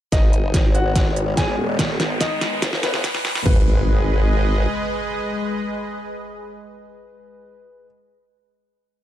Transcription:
0.12 G#1 D#3 G#3 B3 D#4 D#5, kick, snare, closed hi-hat, riser
0.33 closed hi-hat
0.54 G#1, kick, snare, closed hi-hat
0.75 F#4 F#5, closed hi-hat
0.96 kick, snare, closed hi-hat
1.16 closed hi-hat
1.37 G#1 G#4 G#5, kick, snare, closed hi-hat
1.58 D#1
1.79 kick, snare, closed hi-hat
2.00 G#1, snare, closed hi-hat
2.21 D#4 D#5, kick, snare, closed hi-hat
2.41 snare, closed hi-hat
2.62 F#1, kick, snare, closed hi-hat
2.73 snare
2.83 B3 B4, snare, closed hi-hat
2.94 snare
3.04 kick, snare, closed hi-hat
3.15 snare
3.25 snare
3.35 snare
3.46 G#1 G#3 G#4 B4 D#5, kick, crash, impact

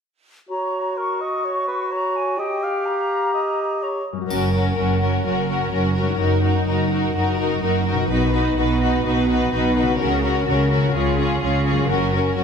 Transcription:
0.49 F#4 C#5 A#5
0.97 A#4 C#6
1.21 D#5
1.45 C#5
1.67 B4
1.92 C#5 A#5
2.15 G#5
2.38 G4 D#5 G5
2.63 F5
2.86 A#5
3.34 D#5
3.81 C#5 A#5
4.12 F#2
4.17 C#4
4.21 F#4
4.26 A#4
4.30 F#1 F#2 C#4 F#4 A#4, triangle
4.54 C#4 F#4 A#4
4.77 F#1 F#2 C#4 F#4 A#4
5.01 C#4 F#4 A#4
5.25 F#1 F#2 C#4 F#4 A#4
5.48 C#4 F#4 A#4
5.72 F#1 F#2 C#4 F#4 A#4
5.96 C#4 F#4 A#4
6.02 F#2
6.06 D#4
6.11 F#4
6.16 F#1 A#4
6.20 F#2 D#4 F#4 A#4
6.43 D#4 F#4 A#4
6.67 F#1 F#2 D#4 F#4 A#4
6.91 D#4 F#4 A#4
7.15 F#1 F#2 D#4 F#4 A#4
7.38 D#4 F#4 A#4
7.62 F#1 F#2 D#4 F#4 A#4
7.86 D#4 F#4 A#4
7.92 B2
7.97 D#4
8.01 F#4
8.05 F#4 B4
8.10 B1 B2 D#4 B4
8.34 D#4 F#4 B4
8.57 B1 B2 D#4 F#4 B4
8.81 D#4 F#4 B4
9.05 B1 B2 D#4 F#4 B4
9.29 D#4 F#4 B4
9.53 B1 B2 D#4 F#4 B4
9.77 D#4 F#4 B4
9.82 C#3
9.87 C#4
9.91 F#4
9.96 F#4 A#4
10.00 C#2 C#3 C#4
10.24 C#4 F#4 A#4
10.47 C#2 C#3 C#4 F#4 A#4
10.69 C#4 F#4 A#4
10.77 C#3
10.81 C#4
10.86 F4
10.90 G#4
10.95 C#2 C#3 C#4 F4
11.18 C#4 F4 G#4
11.42 C#2 C#3 C#4 F4 G#4
11.66 C#4 F4 G#4
11.71 F#2
11.75 C#4
11.80 F#4
11.85 A#4
11.89 F#1 F#2 C#4 F#4 A#4
12.13 C#4 F#4 A#4
12.37 F#1 F#2 C#4 F#4 A#4

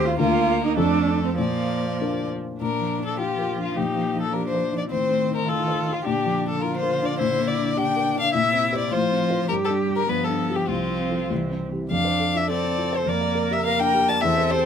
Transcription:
Already playing: D#2 A3 C4 F4 A4 C5
0.06 F4
0.18 D2 A#3 D4 F4 A#4
0.64 D#4
0.77 F2 A3 C4 D4 F4 A4
1.24 C4
1.37 A#2 F3 A#3 D5
2.01 D4 F4 A#4
2.59 A#2 F3 D4 A#4
2.80 F3
2.99 D4
3.06 A4
3.18 F4 G4
3.39 A#4
3.58 D4
3.62 F4
3.75 A#2 D#4 G4
3.97 A#3
4.16 D#4
4.21 A4
4.33 D4 G4 A#4
4.47 C5
4.54 C5
4.72 D#4
4.78 D5
4.90 A2 D#3 C4 C5
5.10 A3
5.30 D#4
5.36 A#4
5.47 F4 A4
5.68 C5
5.88 D#4
5.93 F4
6.04 A#2 D3 D4 G4
6.25 F3
6.45 D4 A4
6.61 F4 A#4
6.76 C5
6.83 A#4
7.02 D4 D5
7.19 A#2 E4 C5
7.40 A#3
7.47 D5
7.58 D4
7.77 D4 G4 G5
7.96 A#4
8.15 D4
8.20 F5
8.33 A#2 C3 E4 E5
8.53 C4
8.73 G4 C5
8.78 D5
8.91 A2 F3 F4 C5
9.10 C4
9.30 F4 C5
9.49 G2 G3 G4 A#4
9.65 A4
9.70 D4
9.89 G4
9.96 A#4
10.09 G2 F3 B3 B4
10.24 A4
10.29 D4
10.49 F4 G4
10.55 G4
10.68 C2 F3 C4 F4
10.90 C4
11.10 F4 A4
11.30 C2 E3
11.51 C4
11.72 E4 G4
11.91 F2 D4 F5
12.05 C5
12.20 A4
12.34 F4 E5
12.48 C4 A4 D5
12.64 C4
12.77 F4
12.93 C5
13.06 F2 A#3 A#4 D5
13.21 D5
13.35 A#4
13.51 G4 E5
13.65 A#3 A#4 F5
13.79 D4 G5
13.94 G4
14.08 D5 A5
14.21 E2 C4 A4 E5
14.37 C5
14.51 G4 C5

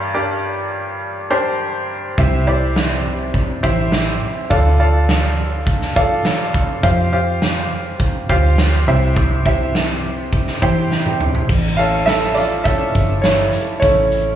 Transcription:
Already playing: G2 D4 G4 A#4 D5
0.14 D4 G4 A#4 D5
1.30 D4 G4 A#4 C5
2.18 C2 C3 E4 G4 C5 E5, kick
2.47 E4 G4 C5 D5
2.76 snare
3.34 kick
3.63 A1 E4 G4 C5 E5, kick
3.92 snare
4.50 D2 D3 F4 A4 D5 F5, kick
4.80 F4 A4 D5 F5
5.09 snare
5.67 kick
5.82 snare
5.96 A1 F4 A4 D5 F5, kick
6.25 snare
6.54 kick
6.83 F2 F4 G4 C5 F5, kick
7.13 F4 G4 C5 F5
7.42 snare
8.00 kick
8.29 D2 F4 G4 C5 F5, kick
8.58 snare
8.87 C2 C3 E4 G4 C5 E5
9.16 kick
9.46 E4 G4 C5 E5, kick
9.75 snare
10.33 kick
10.47 snare
10.62 E2 E4 G4 C5 G5, kick
10.91 snare
11.06 high tom
11.20 mid tom
11.35 floor tom
11.49 A1, kick, crash
11.77 A3 C#4 E4 A4 F5, closed hi-hat
12.06 A4 E5, snare, closed hi-hat
12.35 F4 D5, closed hi-hat
12.64 A3 C#4 E4 A4 E5, kick, closed hi-hat
12.95 G1, kick, closed hi-hat
13.22 E4 C#5, snare, closed hi-hat
13.53 closed hi-hat
13.80 A1 A3 C#4 E4 C#5, kick, closed hi-hat
14.12 closed hi-hat

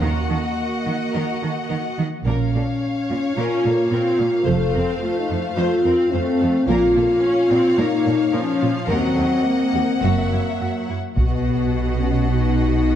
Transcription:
0.00 D#2 D#3 A#3 F#4 A#4 D#5 F#5
0.29 D#3 A4
0.86 D#3 F#4
1.13 D#3 A#4
1.43 D#3 A4
1.69 D#3 A#4
1.98 D#3 F#4
2.25 A#1 A#2 C#4 A#4 C#5 F5
2.55 A#2 A4
3.10 A#2 F4
3.35 A#2 C#4 F4 A#4
3.65 A#2 A#3 A4
3.91 A#2 C4 F4 A#4
4.18 A#2 A#3 F4
4.44 F1 F2 A3 A4 C5
4.74 F2 C4 A#4
4.99 A3 F4
5.19 D#4
5.29 F2 A4
5.38 F4
5.57 F2 A3 F4 C5
5.85 F2 C4 A#4
6.11 F2 A3 C4 C5
6.40 F2 A4
6.67 A#1 A#2 A#3 F4 A#4 C#5 F5
6.95 A#2 A4
7.22 C#4
7.50 A#2 C4 F4
7.78 A#2 A#3 D#4 A#4
8.05 A#2 A4
8.33 A#2 F3 C#4 A#4
8.60 A#2 F4
8.87 D#2 F#3 C4 A#4 D#5 F#5
9.15 D#2 A4
9.46 A#3
9.74 D#2 F#4
10.02 F#1 F#2 F#3 A#3 F#4 E5
10.31 F#2 E4
10.61 F#2 F#4
10.89 F#2 E4
11.16 B1 B2 B3 F#4 D#5 F#5, taiko
12.00 C#4
12.28 D#4

